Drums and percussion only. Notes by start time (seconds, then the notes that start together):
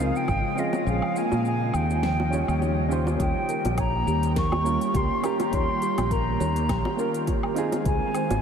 0.00 shaker
0.16 shaker
0.28 kick, high bongo, low woodblock, shaker
0.58 shaker
0.73 high bongo, shaker
0.87 shaker
1.02 low woodblock
1.16 shaker
1.32 high bongo, shaker
1.45 shaker
1.74 low woodblock, shaker
1.90 shaker
2.03 snare, shaker
2.20 high bongo
2.33 shaker
2.48 low woodblock, shaker
2.62 high bongo, shaker
2.91 shaker
3.07 high bongo, shaker
3.20 kick, closed hi-hat, shaker
3.49 closed hi-hat, shaker
3.65 closed hi-hat, high bongo, shaker
3.78 kick, closed hi-hat, low woodblock, shaker
4.08 shaker
4.23 closed hi-hat, shaker
4.36 kick, snare, closed hi-hat, shaker
4.52 high bongo, low woodblock
4.66 shaker
4.81 closed hi-hat, shaker
4.94 kick, closed hi-hat, high bongo, shaker
5.24 closed hi-hat, low woodblock, shaker
5.40 closed hi-hat, high bongo, shaker
5.53 kick, closed hi-hat, shaker
5.82 closed hi-hat, shaker
5.98 closed hi-hat, high bongo, low woodblock, shaker
6.11 kick, closed hi-hat, shaker
6.40 high bongo, shaker
6.56 closed hi-hat, shaker
6.69 kick, snare, closed hi-hat, low woodblock, shaker
6.85 high bongo
6.99 shaker
7.14 closed hi-hat, shaker
7.27 kick, closed hi-hat, high bongo, shaker
7.43 low woodblock
7.56 closed hi-hat, shaker
7.72 closed hi-hat, high bongo, shaker
7.86 kick, closed hi-hat, shaker
8.15 closed hi-hat, low woodblock, shaker
8.31 closed hi-hat, high bongo, shaker